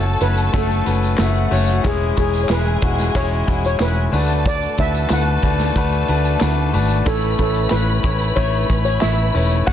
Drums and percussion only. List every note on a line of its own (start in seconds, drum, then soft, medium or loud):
0.21 closed hi-hat medium
0.37 closed hi-hat soft
0.54 kick medium
0.54 closed hi-hat medium
0.71 closed hi-hat soft
0.86 closed hi-hat medium
1.03 closed hi-hat soft
1.18 snare loud
1.18 clap medium
1.18 closed hi-hat medium
1.35 closed hi-hat soft
1.51 open hi-hat medium
1.69 closed hi-hat medium
1.84 kick loud
1.84 closed hi-hat medium
2.17 kick medium
2.17 closed hi-hat medium
2.34 closed hi-hat soft
2.49 snare loud
2.49 clap medium
2.49 closed hi-hat loud
2.66 closed hi-hat soft
2.82 kick medium
2.82 closed hi-hat medium
2.99 snare soft
2.99 closed hi-hat medium
3.15 kick medium
3.15 closed hi-hat medium
3.48 kick medium
3.48 closed hi-hat medium
3.64 closed hi-hat soft
3.80 snare loud
3.80 clap loud
3.80 closed hi-hat loud
4.13 open hi-hat medium
4.30 closed hi-hat medium
4.45 kick loud
4.45 closed hi-hat medium
4.62 closed hi-hat soft
4.78 kick medium
4.78 closed hi-hat medium
4.94 closed hi-hat soft
5.10 snare loud
5.10 clap medium
5.10 closed hi-hat loud
5.43 kick medium
5.43 closed hi-hat medium
5.59 snare soft
5.59 closed hi-hat medium
5.76 kick medium
5.76 closed hi-hat medium
5.93 closed hi-hat soft
6.08 closed hi-hat medium
6.25 closed hi-hat soft
6.41 snare loud
6.41 clap medium
6.41 closed hi-hat loud
6.74 open hi-hat medium
6.91 closed hi-hat medium
7.06 kick loud
7.06 closed hi-hat medium
7.22 closed hi-hat soft
7.38 kick medium
7.38 closed hi-hat medium
7.54 closed hi-hat soft
7.70 snare loud
7.70 clap medium
7.70 closed hi-hat loud
8.03 kick loud
8.03 closed hi-hat medium
8.20 closed hi-hat soft
8.37 kick medium
8.37 closed hi-hat medium
8.54 closed hi-hat soft
8.70 kick medium
8.70 closed hi-hat medium
8.86 closed hi-hat soft
9.01 snare loud
9.01 clap medium
9.01 closed hi-hat loud
9.35 open hi-hat medium
9.51 closed hi-hat medium
9.67 kick loud
9.67 closed hi-hat medium